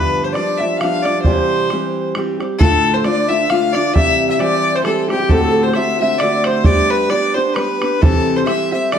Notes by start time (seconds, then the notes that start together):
Already playing: G2 D3 F3 G3 B3 D4 B4 D5 E5
0.24 C5
0.33 F3 G3 D5, bodhran
0.37 B3 D4
0.58 G3 B3 D4 E5
0.63 F3
0.77 F5
0.81 F3 G3 B3 D4 F5, bodhran
1.03 B3 D4 D5, bodhran
1.08 F3 G3
1.22 C3 E3 C5, bodhran
1.27 G3 C4 G4
1.70 E3 G3 C4 G4, bodhran
2.15 E3 G3 C4 G4, bodhran
2.40 G3 C4 G4, bodhran
2.58 D2 A2 D3 A3 D4 F4 A4, bodhran
2.94 C5
3.04 D3 A3 D4 F4 D5, bodhran
3.28 D3 A3 D4 F4 E5
3.50 D3 A3 D4 F4 F5, bodhran
3.73 A3 D4 F4 D5, bodhran
3.77 D3
3.94 C3 E3 G3 C4 G4 E5, bodhran
4.29 E5
4.39 E3 G3 C4 G4 D5, bodhran
4.75 C5
4.84 E3 G3 C4 G4 A4, bodhran
4.88 A4
5.09 G3 C4 G4, bodhran
5.13 G4
5.19 G4
5.23 G4
5.29 D2 A2 D3 A3 C4 F#4 A4, bodhran
5.33 A4
5.41 A4
5.52 A4
5.63 C5
5.68 C5
5.74 D3 A3 C4 F#4 E5, bodhran
5.78 E5
6.00 D3 A3 C4 F#4 E5
6.18 D3 A3 C4 D5, bodhran
6.23 F#4 D5
6.44 C5, bodhran
6.64 G3 B3 D4 G4 D5, bodhran
6.90 B4
7.09 G3 B3 D4 G4 D5, bodhran
7.34 B3 D4 G4 C5
7.54 G3 B3 D4 G4 B4, bodhran
7.58 B4
7.81 B3 D4 G4 B4, bodhran
8.01 C3 E3 G3 C4 G4 A4, bodhran
8.36 C5
8.46 E3 G3 C4 G4 E5, bodhran
8.72 G3 C4 G4 E5
8.92 E3 G3 C4 G4 D5, bodhran